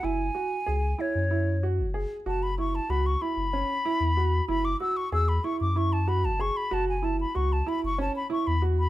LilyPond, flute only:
\new Staff \with { instrumentName = "Flute" } { \time 7/8 \key fis \minor \tempo 4 = 94 gis''4. cis''4 r4 | a''16 b''16 cis'''16 a''16 b''16 cis'''16 b''2 | b''16 d'''16 e'''16 cis'''16 e'''16 b''16 cis'''16 d'''16 cis'''16 a''16 b''16 a''16 cis'''16 b''16 | a''16 gis''16 a''16 b''16 cis'''16 a''16 b''16 cis'''16 a''16 b''16 cis'''16 b''16 r16 b''16 | }